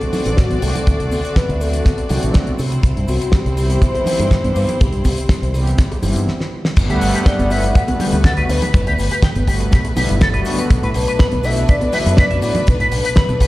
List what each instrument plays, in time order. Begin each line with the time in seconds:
Already playing: string section C4 F#4 D5, soft synth lead A4
0.01 analog synth pad D3 F#3 A3 C4 B4, closed hi-hat, high bongo
0.13 analog synth pad D3 F#3 A3 C4 F#4, open hi-hat, low conga, cabasa
0.25 fingered electric bass A1, closed hi-hat, high bongo, cabasa
0.37 soft synth lead F#4, kick, snare, closed hi-hat, cabasa
0.50 fingered electric bass A1, analog synth pad D3 F#3 A3 C4 F#4, closed hi-hat, high conga
0.62 fingered electric bass C2, soft synth lead A4, open hi-hat, cabasa
0.75 closed hi-hat, low conga, cabasa
0.87 fingered electric bass D2, kick, closed hi-hat, cabasa
1.00 fingered electric bass C2, closed hi-hat
1.11 fingered electric bass D2, open hi-hat, high conga, cabasa
1.25 closed hi-hat, cabasa
1.36 soft synth lead B4, kick, snare, closed hi-hat, cabasa
1.49 fingered electric bass D2, closed hi-hat
1.60 analog synth pad D3 F#3 A3 C4 F#4, soft synth lead A4, open hi-hat, high bongo, cabasa
1.73 closed hi-hat, cabasa
1.85 kick, snare, closed hi-hat, high conga, cabasa
1.98 closed hi-hat, high bongo
2.09 fingered electric bass C2, analog synth pad D3 F#3 A3 C4 F#4, open hi-hat, low conga, cabasa
2.22 fingered electric bass A1, analog synth pad D3 F#3 A3 C4 F#4, closed hi-hat, cabasa
2.34 kick, snare, closed hi-hat, cabasa
2.47 closed hi-hat, high conga
2.58 fingered electric bass C3, string section C4 E4 C5, open hi-hat, cabasa
2.72 closed hi-hat, cabasa
2.83 fingered electric bass C2, kick, closed hi-hat, cabasa
2.96 fingered electric bass G2, closed hi-hat
3.08 fingered electric bass C2, soft synth lead F#4, open hi-hat, high conga, cabasa
3.21 closed hi-hat, cabasa
3.32 soft synth lead G4, kick, snare, closed hi-hat, high bongo, cabasa
3.46 fingered electric bass C2, closed hi-hat
3.57 analog synth pad E3 G3 B3 C4 G4, open hi-hat, high bongo, cabasa
3.70 closed hi-hat, cabasa
3.82 soft synth lead C5, kick, closed hi-hat, high conga, cabasa
3.94 analog synth pad E3 G3 B3 C4 B4, closed hi-hat, high bongo
4.06 analog synth pad E3 G3 B3 C4 G4, open hi-hat, low conga, cabasa
4.19 fingered electric bass G2, closed hi-hat, high bongo, cabasa
4.31 kick, snare, closed hi-hat, cabasa
4.43 fingered electric bass G2, analog synth pad E3 G3 B3 C4 G4, closed hi-hat, high conga
4.56 fingered electric bass G2, soft synth lead C5, open hi-hat, cabasa
4.68 closed hi-hat, low conga, cabasa
4.81 fingered electric bass C2, soft synth lead G4, kick, closed hi-hat, cabasa
4.92 fingered electric bass G2, closed hi-hat
5.04 fingered electric bass C2, kick, open hi-hat, high conga, cabasa
5.18 closed hi-hat, cabasa
5.29 kick, snare, closed hi-hat, high bongo, cabasa
5.42 fingered electric bass C2, closed hi-hat
5.53 analog synth pad E3 G3 B3 C4 G4, open hi-hat, high bongo, cabasa
5.67 closed hi-hat, cabasa
5.78 kick, snare, closed hi-hat, high conga, cabasa
5.92 closed hi-hat, high bongo
6.03 fingered electric bass G1, analog synth pad E3 G3 B3 C4 E4, open hi-hat, low conga, cabasa
6.16 fingered electric bass G2, closed hi-hat, cabasa
6.28 snare
6.40 snare
6.65 snare
6.76 fingered electric bass G1, analog synth pad D3 G3 A3 B3 F#5, string section A3 B4, kick, closed hi-hat, crash, cabasa
6.89 fingered electric bass D2, clean electric guitar G4, closed hi-hat, cabasa
7.01 fingered electric bass G1, open hi-hat, cabasa
7.13 clean electric guitar G4, closed hi-hat, cabasa
7.26 soft synth lead D5, clean electric guitar G5, kick, snare, closed hi-hat, high bongo, cabasa
7.39 fingered electric bass G1, closed hi-hat, high conga, cabasa
7.50 analog synth pad D3 G3 A3 B3 F#4, clean electric guitar G4, soft synth lead E5, open hi-hat, high bongo, cabasa
7.64 closed hi-hat, cabasa
7.75 clean electric guitar G4, soft synth lead F#5, kick, closed hi-hat, cabasa
7.88 analog synth pad D3 G3 A3 B3 A4, closed hi-hat, high bongo, high conga, cabasa
7.99 analog synth pad D3 G3 A3 B3 F#4, clean electric guitar G4, open hi-hat, low conga, cabasa
8.12 fingered electric bass D2, closed hi-hat, high bongo, cabasa
8.24 clean electric guitar A4, kick, snare, closed hi-hat, cabasa
8.37 fingered electric bass D2, analog synth pad D3 G3 A3 B3 F#4, clean electric guitar B4, closed hi-hat, cabasa
8.49 fingered electric bass D2, soft synth lead B4, open hi-hat, cabasa
8.62 clean electric guitar G4, closed hi-hat, low conga, cabasa
8.74 fingered electric bass G1, kick, closed hi-hat, cabasa
8.87 fingered electric bass D2, clean electric guitar G4, closed hi-hat, cabasa
8.98 fingered electric bass G1, open hi-hat, cabasa
9.10 clean electric guitar G4, closed hi-hat, cabasa
9.22 clean electric guitar G5, kick, snare, closed hi-hat, cabasa
9.35 fingered electric bass G1, closed hi-hat, high conga, cabasa
9.47 analog synth pad D3 G3 A3 B3 F#4, clean electric guitar G4, kick, open hi-hat, high bongo, cabasa
9.60 closed hi-hat, cabasa
9.71 fingered electric bass B1, clean electric guitar G4, kick, snare, closed hi-hat, cabasa
9.84 closed hi-hat, high bongo, cabasa
9.96 fingered electric bass B1, analog synth pad D3 G3 A3 B3 E4, clean electric guitar G4, open hi-hat, high conga, low conga, cabasa
10.09 fingered electric bass G1, closed hi-hat, cabasa
10.21 clean electric guitar A4, kick, snare, closed hi-hat, cabasa
10.33 analog synth pad D3 G3 A3 B3 F#4, clean electric guitar B4, closed hi-hat, cabasa
10.45 analog synth pad D3 F#3 A3 B3 F#4, string section D4 B4, open hi-hat, cabasa
10.58 clean electric guitar B4, closed hi-hat, cabasa
10.70 fingered electric bass B1, kick, closed hi-hat, cabasa
10.82 fingered electric bass A2, clean electric guitar B4, closed hi-hat, cabasa
10.94 fingered electric bass B1, soft synth lead B4, open hi-hat, cabasa
11.07 clean electric guitar B4, closed hi-hat, cabasa
11.19 clean electric guitar B5, kick, snare, closed hi-hat, high bongo, cabasa
11.31 fingered electric bass B1, closed hi-hat, high conga, cabasa
11.43 analog synth pad D3 F#3 A3 B3 F#4, clean electric guitar B4, soft synth lead E5, open hi-hat, high bongo, cabasa
11.56 closed hi-hat, cabasa
11.68 clean electric guitar B4, soft synth lead D5, kick, closed hi-hat, cabasa
11.81 analog synth pad D3 F#3 A3 B3 B4, closed hi-hat, high bongo, high conga, cabasa
11.92 analog synth pad D3 F#3 A3 B3 F#4, clean electric guitar B4, soft synth lead E5, open hi-hat, low conga, cabasa
12.06 fingered electric bass F#2, closed hi-hat, high bongo, cabasa
12.17 clean electric guitar B4, soft synth lead D5, kick, snare, closed hi-hat, cabasa
12.30 fingered electric bass F#2, analog synth pad D3 F#3 A3 B3 F#4, clean electric guitar E5, closed hi-hat, cabasa
12.42 fingered electric bass A2, soft synth lead D5, open hi-hat, cabasa
12.55 clean electric guitar B4, closed hi-hat, low conga, cabasa
12.67 fingered electric bass B1, soft synth lead B4, kick, closed hi-hat, cabasa
12.80 fingered electric bass A2, clean electric guitar B4, closed hi-hat, cabasa
12.91 fingered electric bass B1, open hi-hat, cabasa
13.05 clean electric guitar B4, closed hi-hat, cabasa
13.16 soft synth lead B4, clean electric guitar B5, kick, snare, closed hi-hat, high bongo, cabasa
13.29 fingered electric bass B1, closed hi-hat, high conga, cabasa
13.40 analog synth pad D3 F#3 A3 B3 F#4, clean electric guitar B4, kick, open hi-hat, high bongo, cabasa